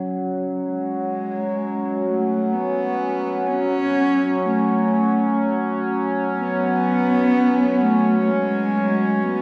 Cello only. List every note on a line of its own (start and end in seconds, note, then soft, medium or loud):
0.00 0.21 F#3 medium
0.68 2.08 G#3 medium
2.06 2.55 A3 medium
2.54 3.48 B3 medium
3.47 4.47 C#4 loud
4.46 5.89 A3 medium
6.39 7.84 B3 loud
7.82 8.21 A3 medium
8.21 8.30 A3 medium
8.28 9.25 G#3 medium
9.23 9.42 B3 loud